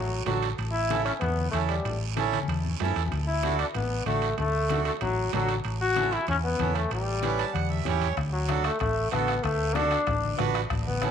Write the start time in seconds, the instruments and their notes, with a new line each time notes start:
Already playing: fingered electric bass A1, trombone F#3
0.25 fingered electric bass A1, trombone F#3, accordion D4 F#4 A4, high conga, high timbale, low timbale, short guiro
0.42 high timbale, short guiro
0.58 fingered electric bass A1, high conga, high timbale, long guiro
0.72 trombone E4
0.90 accordion C#4 E4 A4, high conga, high timbale, short guiro
1.05 trombone C#4, high timbale, short guiro
1.20 fingered electric bass E2, trombone B3, high conga, low conga, high timbale, long guiro
1.38 high conga
1.51 fingered electric bass E2, trombone A3, accordion C#4 E4 A4, high conga, high timbale, short guiro
1.68 trombone G3, high timbale, short guiro
1.85 fingered electric bass A1, high conga, low conga, high timbale, long guiro
2.16 accordion C#4 E4 A4, high conga, high timbale, short guiro
2.32 high conga, high timbale, short guiro
2.43 high conga
2.48 fingered electric bass E2, high timbale, long guiro
2.65 low conga
2.80 fingered electric bass F#2, accordion C#4 E4 A4, high timbale, low timbale, short guiro
2.85 low conga
2.96 fingered electric bass E2, high timbale, short guiro
3.06 low conga
3.12 fingered electric bass D2, high conga, low conga, high timbale, long guiro
3.27 trombone E4
3.43 accordion D4 F#4 A4, high conga, high timbale, short guiro
3.59 trombone D4, high timbale, short guiro
3.74 fingered electric bass A1, trombone B3, high conga, low conga, high timbale, long guiro
4.05 fingered electric bass A1, trombone A3, accordion D4 F#4 A4, high conga, high timbale, short guiro
4.22 high timbale, short guiro
4.38 fingered electric bass D2, trombone A3, high conga, low conga, high timbale, long guiro
4.70 accordion D4 F#4 A4, high conga, high timbale, short guiro
4.85 trombone A3, high timbale, short guiro
5.01 fingered electric bass A1, trombone F#3, high conga, low conga, high timbale, long guiro
5.32 fingered electric bass A1, trombone F#3, accordion D4 F#4 A4, high conga, high timbale, low timbale, short guiro
5.48 high timbale, short guiro
5.64 fingered electric bass A1, high conga, high timbale, long guiro
5.81 trombone F#4
5.96 accordion C#4 E4 A4, high conga, high timbale, short guiro
6.11 trombone E4, high timbale, short guiro
6.27 fingered electric bass E2, trombone C#4, high conga, low conga, high timbale, long guiro
6.44 trombone B3
6.59 fingered electric bass E2, accordion C#4 E4 A4, high conga, low conga, high timbale, short guiro
6.75 trombone A3, high timbale, short guiro
6.91 fingered electric bass A1, trombone G3, high conga, high timbale, long guiro
7.23 accordion C#4 E4 B4, high conga, high timbale, short guiro
7.38 accordion A5, high timbale, short guiro
7.53 fingered electric bass E2, accordion F#5, high conga, high timbale, long guiro
7.70 accordion E5, high conga
7.85 fingered electric bass E2, accordion C#4 E4 G4 C#5, low conga, high timbale, short guiro
8.01 low conga, high timbale, short guiro
8.17 fingered electric bass D2, bombo low, bombo rim, high conga, high timbale, long guiro
8.33 trombone F#3
8.48 accordion D4 F#4 A4, bombo rim, high conga, high timbale, short guiro
8.64 trombone A3, bombo rim, high timbale, short guiro
8.79 fingered electric bass A1, trombone A3, bombo low, bombo rim, high conga, low conga, high timbale, long guiro
9.11 fingered electric bass A1, trombone B3, accordion D4 F#4 A4, bombo rim, high conga, high timbale, short guiro
9.27 bombo rim, high timbale, short guiro
9.43 fingered electric bass D2, trombone A3, bombo low, bombo rim, high conga, high timbale, long guiro
9.75 trombone D4, accordion D4 F#4 A4, bombo rim, high conga, high timbale, short guiro
9.91 bombo rim, high timbale, short guiro
10.06 fingered electric bass A1, bombo low, bombo rim, high conga, low conga, high timbale, long guiro
10.24 high conga
10.38 fingered electric bass A1, accordion D4 F#4 B4, bombo rim, high conga, low conga, high timbale, low timbale, short guiro
10.54 bombo rim, high timbale, short guiro
10.70 fingered electric bass A1, bombo low, bombo rim, high conga, low conga, high timbale, long guiro
10.87 trombone B3, high conga
11.02 accordion C#4 E4 A4, bombo rim, high conga, high timbale, short guiro